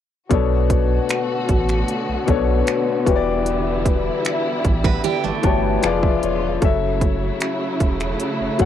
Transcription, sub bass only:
0.31 B1
1.49 A1
2.09 B1
2.28 B1
3.07 E1
4.65 A1
5.24 G1
5.44 G1
5.84 F1
6.23 E1
6.62 F#1
7.81 E1
8.40 F#1
8.60 F#1

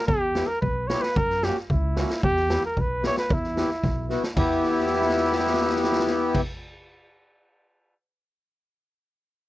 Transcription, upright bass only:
0.08 E2
0.62 B1
1.16 F#2
1.70 C#2
2.23 E2
2.77 B1
3.30 E2
3.83 B1
4.36 E2

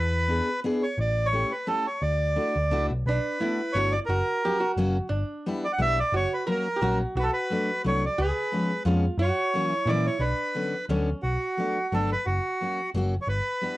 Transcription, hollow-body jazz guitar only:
3.09 D4
3.41 E4
4.09 F#4
4.45 G4
4.60 F#4
5.09 D4
6.14 F#4
6.47 A#4
6.76 G4
6.82 F#4
7.17 F#4
8.18 G#4
8.86 F4
9.19 F#4
9.72 E4
9.87 E4
10.20 D4
10.89 C#4

